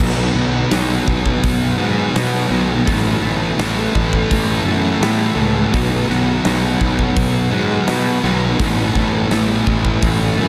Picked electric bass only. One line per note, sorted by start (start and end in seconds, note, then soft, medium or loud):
0.00 0.28 B1 medium
0.34 0.63 B1 medium
0.72 1.00 B1 medium
1.07 1.36 B1 medium
1.44 1.72 B1 medium
1.78 2.07 G#2 medium
2.15 2.44 B2 medium
2.50 2.79 B1 medium
2.88 3.16 A1 medium
3.23 3.51 A1 medium
3.59 3.87 A1 medium
3.95 4.23 A1 medium
4.32 4.60 A1 medium
4.65 4.94 F#2 medium
5.00 5.30 A2 medium
5.35 5.65 C#2 medium
5.74 6.02 B1 medium
6.09 6.38 B1 medium
6.45 6.74 B1 medium
6.81 7.09 B1 medium
7.17 7.45 B1 medium
7.52 7.81 G#2 medium
7.88 8.17 B2 medium
8.24 8.52 B1 medium
8.59 8.88 A1 medium
8.95 9.24 A1 medium
9.31 9.60 A1 medium
9.67 9.96 A1 medium
10.03 10.32 A1 medium
10.38 10.48 F#2 medium